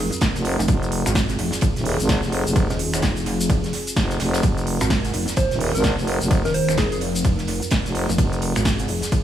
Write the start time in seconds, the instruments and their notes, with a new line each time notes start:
Already playing: wobble bass F1, analog synth pad C4 F4 A#4
0.12 closed hi-hat, shaker
0.21 kick, snare, closed hi-hat, ride, shaker
0.35 fm bass F1, snare, closed hi-hat, shaker
0.45 closed hi-hat, open hi-hat
0.59 wobble bass F1, shaker
0.68 fm bass F1, analog synth pad G#4, kick, closed hi-hat, ride, shaker
0.83 closed hi-hat, shaker
0.92 closed hi-hat, open hi-hat
1.06 wobble bass G#1, finger snap, closed hi-hat, shaker
1.15 kick, snare, closed hi-hat, ride, shaker
1.29 closed hi-hat, shaker
1.39 wobble bass F1, closed hi-hat, open hi-hat
1.52 snare, closed hi-hat, shaker
1.61 kick, closed hi-hat, ride, shaker
1.76 fm bass D#1, snare, closed hi-hat, shaker
1.85 open hi-hat
2.00 fm bass G#1, closed hi-hat, shaker
2.09 kick, snare, closed hi-hat, ride, shaker
2.23 fm bass F1, snare, shaker
2.32 closed hi-hat, open hi-hat
2.47 fm bass F1, shaker
2.56 kick, closed hi-hat, ride, shaker
2.70 wobble bass D#1, snare, closed hi-hat, shaker
2.79 closed hi-hat, open hi-hat
2.94 finger snap, closed hi-hat, shaker
3.02 wobble bass F1, kick, snare, closed hi-hat, ride, shaker
3.16 closed hi-hat, shaker
3.26 closed hi-hat, open hi-hat
3.40 closed hi-hat, shaker
3.50 wobble bass F1, kick, closed hi-hat, ride, shaker
3.64 snare, closed hi-hat, shaker
3.73 snare, closed hi-hat, open hi-hat
3.87 closed hi-hat, shaker
3.96 fm bass F1, kick, snare, closed hi-hat, ride, shaker
4.10 snare, closed hi-hat, shaker
4.20 fm bass F1, snare, closed hi-hat, open hi-hat
4.34 snare, closed hi-hat, shaker
4.43 fm bass F1, analog synth pad A#4, kick, closed hi-hat, ride, shaker
4.58 closed hi-hat, shaker
4.67 closed hi-hat, open hi-hat
4.80 wobble bass G#1, finger snap, closed hi-hat, shaker
4.90 kick, snare, closed hi-hat, ride, shaker
5.05 closed hi-hat, shaker
5.14 wobble bass F1, closed hi-hat, open hi-hat
5.28 snare, closed hi-hat, shaker
5.37 soft synth lead C5, kick, closed hi-hat, ride, shaker
5.51 fm bass D#1, snare, closed hi-hat, shaker
5.60 open hi-hat
5.75 fm bass G#1, soft synth lead A#4, closed hi-hat, shaker
5.84 kick, snare, closed hi-hat, ride, shaker
5.98 fm bass F1, snare, shaker
6.07 closed hi-hat, open hi-hat
6.21 fm bass F1, shaker
6.31 kick, closed hi-hat, ride, shaker
6.45 wobble bass D#1, soft synth lead A#4, snare, closed hi-hat, shaker
6.54 soft synth lead C5, closed hi-hat, open hi-hat
6.69 finger snap, closed hi-hat, shaker
6.77 wobble bass F1, soft synth lead G#4, kick, snare, closed hi-hat, ride, shaker
6.92 soft synth lead G#4, closed hi-hat, shaker
7.01 closed hi-hat, open hi-hat
7.16 closed hi-hat, shaker
7.25 wobble bass F1, kick, closed hi-hat, ride
7.39 snare, closed hi-hat, shaker
7.47 snare, closed hi-hat, open hi-hat
7.62 closed hi-hat, shaker
7.71 kick, snare, closed hi-hat, ride, shaker
7.85 fm bass F1, snare, closed hi-hat, shaker
7.95 closed hi-hat, open hi-hat
8.09 wobble bass F1, shaker
8.18 fm bass F1, analog synth pad G#4, kick, closed hi-hat, ride, shaker
8.33 closed hi-hat, shaker
8.42 closed hi-hat, open hi-hat
8.55 wobble bass G#1, finger snap, closed hi-hat, shaker
8.65 kick, snare, closed hi-hat, ride, shaker
8.79 closed hi-hat, shaker
8.88 wobble bass F1, closed hi-hat, open hi-hat
9.02 snare, closed hi-hat, shaker
9.12 kick, closed hi-hat, ride, shaker